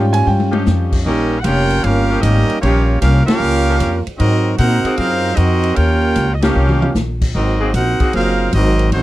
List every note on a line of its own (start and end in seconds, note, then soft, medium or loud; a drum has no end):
0.00 0.26 G#2 loud
0.00 1.01 G3 medium
0.00 1.01 C#4 medium
0.00 1.02 F4 medium
0.00 0.14 G5 medium
0.13 0.26 G#5 loud
0.13 ride medium
0.27 0.65 G2 medium
0.27 0.63 G5 medium
0.27 high tom medium
0.40 high tom medium
0.51 1.01 F3 loud
0.51 1.02 C#4 medium
0.51 1.02 D#4 medium
0.51 1.02 G4 loud
0.51 high tom loud
0.66 1.04 F2 loud
0.66 snare medium
0.66 hi-hat pedal medium
0.92 kick medium
0.92 crash medium
1.05 1.44 A#1 medium
1.05 1.38 G3 medium
1.05 1.38 A#3 medium
1.05 1.38 C#4 medium
1.05 1.38 D#4 loud
1.05 1.38 G4 medium
1.05 1.38 A#4 medium
1.05 1.38 D#5 loud
1.05 kick soft
1.40 1.44 F#5 medium
1.44 1.82 F1 loud
1.44 1.64 F3 medium
1.44 1.82 A#3 medium
1.44 1.82 C#4 medium
1.44 1.64 C#4 medium
1.44 1.64 D#4 medium
1.44 1.84 F4 medium
1.44 1.84 G4 medium
1.44 1.64 G4 medium
1.44 1.83 A#4 loud
1.44 1.84 C#5 medium
1.44 1.84 G5 loud
1.44 kick soft
1.44 hi-hat pedal medium
1.44 ride medium
1.70 ride medium
1.83 2.22 G1 medium
1.83 2.21 A#3 loud
1.83 2.23 C#4 loud
1.83 2.21 C#4 medium
1.83 2.23 F4 loud
1.83 2.21 G4 medium
1.83 2.21 A#4 loud
1.83 2.23 F5 loud
1.83 kick soft
1.83 ride medium
2.10 2.60 F3 medium
2.10 2.60 C#4 medium
2.10 2.60 D#4 medium
2.10 2.60 G4 loud
2.22 2.47 G#1 medium
2.22 2.60 G3 medium
2.22 2.60 A#3 loud
2.22 2.62 C#4 medium
2.22 2.62 D#4 medium
2.22 2.60 G4 medium
2.22 2.62 A#4 medium
2.22 2.62 D#5 loud
2.22 kick soft
2.22 hi-hat pedal medium
2.22 ride medium
2.50 muted upright bass stroke soft
2.50 ride medium
2.61 3.01 A#1 medium
2.61 2.98 G3 medium
2.61 2.98 A#3 medium
2.61 2.98 C#4 medium
2.61 2.98 F4 medium
2.61 2.98 G4 medium
2.61 2.99 C#5 loud
2.61 kick soft
2.61 ride medium
2.65 2.82 F3 loud
2.65 2.82 C#4 medium
2.65 2.82 D#4 medium
2.65 2.82 G4 loud
3.00 3.26 C2 loud
3.00 3.25 A#3 medium
3.00 3.25 C#4 medium
3.00 3.25 F4 medium
3.00 3.25 G4 medium
3.00 3.25 A#4 medium
3.00 3.25 F5 loud
3.00 kick soft
3.00 hi-hat pedal medium
3.00 ride medium
3.26 4.02 A#3 loud
3.26 4.02 C#4 loud
3.26 4.02 C#4 medium
3.26 4.02 F4 loud
3.26 4.02 G4 loud
3.26 4.02 A#4 loud
3.26 4.02 F5 loud
3.26 muted upright bass stroke soft
3.26 snare loud
3.26 ride medium
3.40 3.79 C#2 loud
3.70 3.78 F3 loud
3.70 3.78 C#4 medium
3.70 3.78 D#4 medium
3.70 3.78 A#4 loud
3.80 4.05 F2 loud
3.80 kick soft
3.80 hi-hat pedal medium
3.80 ride medium
4.07 muted upright bass stroke soft
4.07 ride medium
4.18 4.58 G#2 medium
4.18 4.56 F#3 medium
4.18 4.55 C4 medium
4.18 4.56 C4 medium
4.18 4.55 D#4 medium
4.18 4.56 F#4 medium
4.18 4.56 A#4 medium
4.18 4.56 D#5 medium
4.18 kick soft
4.18 ride medium
4.58 4.84 A#2 loud
4.58 4.95 C4 medium
4.58 4.95 D#4 medium
4.58 4.95 F#4 medium
4.58 4.96 A#4 medium
4.58 4.95 C5 medium
4.58 4.96 F#5 loud
4.58 kick soft
4.58 hi-hat pedal medium
4.58 ride medium
4.84 5.35 F#3 loud
4.84 5.36 A#3 medium
4.84 5.35 C4 loud
4.84 5.35 G#4 loud
4.84 muted upright bass stroke soft
4.84 ride medium
4.97 5.36 F#2 medium
4.97 5.37 F#3 medium
4.97 5.35 C4 medium
4.97 5.37 D#4 loud
4.97 5.38 F4 medium
4.97 5.36 A#4 medium
4.97 5.37 C5 medium
4.97 5.37 F5 loud
4.97 kick soft
4.97 ride medium
5.36 5.76 F2 loud
5.36 5.76 C4 medium
5.36 5.77 C4 medium
5.36 5.76 D#4 medium
5.36 5.77 F#4 medium
5.36 5.75 A#4 medium
5.36 5.76 D#5 loud
5.36 kick soft
5.36 hi-hat pedal medium
5.36 ride medium
5.63 ride medium
5.75 6.16 D#2 loud
5.75 6.33 A#3 loud
5.75 6.33 C#4 medium
5.75 6.33 F4 medium
5.75 6.33 G4 medium
5.75 6.33 A#4 medium
5.75 6.33 C#5 medium
5.75 6.33 G5 loud
5.75 kick soft
5.75 ride medium
6.15 6.55 C#2 loud
6.15 kick soft
6.15 hi-hat pedal medium
6.15 ride medium
6.34 6.43 D#5 medium
6.42 6.93 F3 loud
6.42 6.95 A#3 medium
6.42 6.95 C#4 medium
6.42 6.93 C#4 loud
6.42 6.93 D#4 loud
6.42 6.95 F4 medium
6.42 6.95 G4 medium
6.42 6.93 G4 loud
6.42 6.95 A#4 medium
6.42 6.95 F5 loud
6.42 snare loud
6.42 ride medium
6.55 6.94 C2 medium
6.69 mid tom medium
6.82 mid tom loud
6.95 7.33 A#1 medium
6.95 snare medium
6.95 hi-hat pedal medium
7.21 kick medium
7.21 crash medium
7.35 7.73 G#1 medium
7.35 7.72 F#3 medium
7.35 7.72 C4 medium
7.35 7.72 D#4 medium
7.35 7.72 F#4 medium
7.35 7.72 A#4 medium
7.35 7.72 D#5 medium
7.35 kick soft
7.60 7.70 F#3 loud
7.60 7.70 A#3 loud
7.60 7.70 C4 medium
7.60 7.70 G#4 loud
7.74 7.99 A#1 loud
7.74 8.11 C4 medium
7.74 8.11 D#4 medium
7.74 8.12 F#4 medium
7.74 8.11 A#4 medium
7.74 8.11 C5 medium
7.74 8.12 F#5 loud
7.74 kick soft
7.74 hi-hat pedal medium
7.74 ride medium
8.00 8.51 F#3 loud
8.00 8.51 A#3 medium
8.00 8.51 C4 medium
8.00 8.51 G#4 loud
8.00 muted upright bass stroke soft
8.00 kick medium
8.00 ride medium
8.13 8.52 F#1 medium
8.13 8.50 F#3 medium
8.13 8.51 C4 medium
8.13 8.52 D#4 medium
8.13 8.51 F4 medium
8.13 8.51 A#4 medium
8.13 8.51 C5 medium
8.13 8.52 F5 loud
8.13 ride medium
8.53 8.91 G#1 loud
8.53 8.90 F#3 medium
8.53 8.91 C4 medium
8.53 8.91 D#4 medium
8.53 8.91 F#4 medium
8.53 8.91 A#4 medium
8.53 8.91 D#5 loud
8.53 kick soft
8.53 hi-hat pedal medium
8.53 ride medium
8.79 ride medium
8.92 9.03 A1 medium
8.92 9.03 D#3 medium
8.92 9.03 F#3 medium
8.92 9.03 A3 medium
8.92 9.03 C4 medium
8.92 9.03 D#4 medium
8.92 9.03 F#4 medium
8.92 9.03 C5 medium
8.92 kick soft
8.92 ride medium